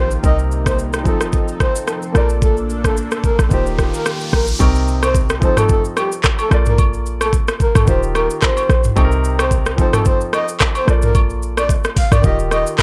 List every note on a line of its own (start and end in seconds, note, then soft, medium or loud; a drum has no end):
0.00 0.17 A#1 loud
0.00 0.20 D#3 medium
0.00 0.23 D#3 medium
0.00 1.02 A#3 medium
0.00 0.21 D#4 medium
0.00 0.22 F4 medium
0.00 0.23 F4 medium
0.00 0.23 G4 medium
0.11 shaker medium
0.23 1.07 C2 medium
0.23 1.05 C3 medium
0.23 1.05 G3 medium
0.23 1.03 C4 medium
0.23 2.13 D#4 medium
0.23 1.05 D#4 medium
0.23 1.06 A#4 medium
0.23 0.37 D#5 loud
0.23 kick loud
0.23 shaker medium
0.39 shaker soft
0.51 shaker medium
0.66 0.77 C5 medium
0.66 kick medium
0.66 cross-stick medium
0.66 shaker medium
0.79 shaker medium
0.93 cross-stick medium
0.93 shaker medium
1.03 1.46 F1 loud
1.03 2.11 F3 medium
1.03 2.14 F3 medium
1.03 2.12 C4 medium
1.03 2.14 C4 medium
1.03 2.13 D#4 medium
1.03 2.14 A4 medium
1.03 1.19 A4 medium
1.03 kick medium
1.03 shaker medium
1.08 2.14 A4 medium
1.21 cross-stick medium
1.21 shaker medium
1.33 kick medium
1.33 shaker medium
1.48 shaker medium
1.60 1.73 C5 medium
1.60 kick medium
1.60 cross-stick medium
1.60 shaker medium
1.76 shaker loud
1.87 cross-stick medium
1.87 shaker medium
2.02 shaker medium
2.12 3.07 A#1 loud
2.12 3.47 A#3 medium
2.12 4.58 A#3 medium
2.12 3.50 D4 medium
2.12 3.48 F4 medium
2.12 3.50 A4 medium
2.12 3.49 A4 medium
2.12 2.28 A#4 medium
2.12 cross-stick medium
2.12 shaker soft
2.17 3.50 D5 medium
2.29 shaker medium
2.42 2.55 A4 loud
2.42 kick loud
2.42 riser medium
2.42 shaker medium
2.57 shaker soft
2.70 shaker medium
2.84 2.95 A4 medium
2.84 kick medium
2.84 cross-stick medium
2.84 shaker medium
2.97 shaker medium
3.11 cross-stick medium
3.11 shaker medium
3.24 3.37 A#4 medium
3.24 kick medium
3.24 shaker medium
3.39 3.48 A#1 medium
3.39 cross-stick medium
3.39 shaker loud
3.49 3.92 D#1 loud
3.49 4.57 D#3 medium
3.49 4.59 D#3 medium
3.49 4.58 D#4 medium
3.49 4.59 F4 medium
3.49 4.59 G4 medium
3.49 3.64 C5 medium
3.49 kick medium
3.49 shaker medium
3.54 4.59 G4 medium
3.66 shaker medium
3.79 kick medium
3.79 cross-stick medium
3.79 shaker medium
3.94 4.04 A#4 medium
3.94 shaker loud
4.06 cross-stick loud
4.06 shaker medium
4.21 shaker medium
4.33 4.53 A#1 loud
4.33 4.46 A#4 medium
4.33 kick medium
4.33 cross-stick medium
4.33 shaker soft
4.47 shaker medium
4.59 5.43 C2 loud
4.59 5.41 C3 medium
4.59 5.40 C4 medium
4.59 5.41 D#4 medium
4.59 5.43 A#4 medium
4.59 kick loud
4.59 high agogo medium
4.59 shaker medium
4.75 shaker soft
4.88 shaker medium
5.03 5.14 C5 medium
5.03 cross-stick medium
5.03 high agogo medium
5.03 shaker medium
5.15 kick medium
5.15 shaker medium
5.29 cross-stick medium
5.29 shaker medium
5.40 5.83 F1 loud
5.40 6.48 F3 medium
5.40 6.49 C4 medium
5.40 6.49 D#4 medium
5.40 5.55 C5 medium
5.40 kick loud
5.40 shaker medium
5.45 6.50 A4 medium
5.57 5.68 A4 medium
5.57 cross-stick medium
5.57 mid tom loud
5.57 high agogo medium
5.57 shaker loud
5.69 5.83 A4 loud
5.69 kick loud
5.69 shaker medium
5.85 shaker medium
5.97 6.10 G4 medium
5.97 cross-stick medium
5.97 high agogo medium
5.97 shaker medium
6.12 shaker loud
6.24 kick loud
6.24 cross-stick loud
6.24 clap loud
6.24 shaker medium
6.39 6.50 A4 medium
6.39 high agogo medium
6.39 shaker medium
6.49 7.44 A#1 loud
6.49 7.84 A#3 medium
6.49 7.84 F4 medium
6.49 7.85 A4 medium
6.49 cross-stick loud
6.49 shaker soft
6.54 7.86 D5 medium
6.66 6.77 A#4 medium
6.66 mid tom medium
6.66 shaker medium
6.78 kick loud
6.78 high agogo medium
6.78 shaker medium
6.93 shaker soft
7.06 shaker medium
7.21 7.32 A4 medium
7.21 cross-stick medium
7.21 high agogo medium
7.21 shaker medium
7.33 kick medium
7.33 shaker medium
7.48 cross-stick loud
7.48 shaker medium
7.60 7.74 A#4 medium
7.60 kick medium
7.60 shaker medium
7.75 7.85 A#1 medium
7.75 7.86 A4 medium
7.75 cross-stick medium
7.75 mid tom loud
7.75 high agogo medium
7.75 shaker loud
7.85 8.28 D#1 loud
7.85 8.93 D#3 medium
7.85 8.94 D#4 medium
7.85 8.95 F4 medium
7.85 8.01 C5 medium
7.85 kick loud
7.85 shaker medium
7.90 8.96 G4 medium
8.03 shaker medium
8.15 8.28 A#4 medium
8.15 cross-stick medium
8.15 high agogo medium
8.15 shaker medium
8.30 shaker loud
8.42 8.82 C5 medium
8.42 kick loud
8.42 cross-stick loud
8.42 clap loud
8.42 shaker medium
8.57 high agogo medium
8.57 shaker medium
8.69 8.90 A#1 loud
8.69 cross-stick medium
8.69 shaker soft
8.84 mid tom medium
8.84 shaker loud
8.96 9.80 C2 loud
8.96 9.78 C3 medium
8.96 9.76 C4 medium
8.96 9.78 D#4 medium
8.96 9.05 A4 medium
8.96 kick loud
8.96 high agogo medium
8.96 shaker medium
9.04 9.82 A#4 medium
9.12 shaker soft
9.24 shaker medium
9.39 9.50 C5 medium
9.39 cross-stick loud
9.39 high agogo medium
9.39 shaker loud
9.51 kick medium
9.51 shaker medium
9.66 cross-stick medium
9.66 shaker medium
9.76 10.19 F1 loud
9.76 10.84 F3 medium
9.76 10.85 C4 medium
9.76 10.86 D#4 medium
9.76 9.92 C5 medium
9.76 kick loud
9.76 shaker medium
9.81 10.87 A4 medium
9.93 10.04 A4 medium
9.93 cross-stick medium
9.93 mid tom loud
9.93 high agogo medium
9.93 shaker loud
10.05 10.19 C5 medium
10.05 kick loud
10.05 shaker medium
10.21 shaker medium
10.33 10.46 D#5 medium
10.33 cross-stick medium
10.33 high agogo medium
10.33 shaker medium
10.48 shaker loud
10.60 kick loud
10.60 cross-stick loud
10.60 clap loud
10.60 shaker medium
10.75 10.86 C5 medium
10.75 high agogo medium
10.75 shaker medium
10.85 11.80 A#1 loud
10.85 12.20 A#3 medium
10.85 12.21 F4 medium
10.85 12.22 A4 medium
10.85 cross-stick medium
10.85 shaker soft
10.90 12.23 D5 medium
11.02 11.13 A#4 medium
11.02 mid tom medium
11.02 shaker medium
11.15 kick loud
11.15 high agogo medium
11.15 shaker medium
11.30 shaker soft
11.43 shaker medium
11.57 11.68 D5 medium
11.57 cross-stick medium
11.57 high agogo medium
11.57 shaker medium
11.69 kick medium
11.69 low woodblock medium
11.69 shaker medium
11.84 cross-stick medium
11.84 shaker medium
11.97 12.10 F5 medium
11.97 kick loud
11.97 open hi-hat medium
11.97 shaker medium
12.12 12.21 A#1 medium
12.12 12.23 D5 medium
12.12 cross-stick medium
12.12 mid tom loud
12.12 high agogo medium
12.12 shaker loud
12.21 12.65 D#1 loud
12.21 12.83 D#3 medium
12.21 12.83 D#4 medium
12.21 12.83 F4 medium
12.21 12.37 D#5 medium
12.21 kick loud
12.21 shaker medium
12.26 12.83 G4 medium
12.39 shaker medium
12.51 12.65 D#5 medium
12.51 cross-stick medium
12.51 high agogo medium
12.51 shaker medium
12.67 shaker loud
12.78 12.83 D#5 medium
12.78 kick loud
12.78 cross-stick loud
12.78 clap loud
12.78 low woodblock medium
12.78 shaker medium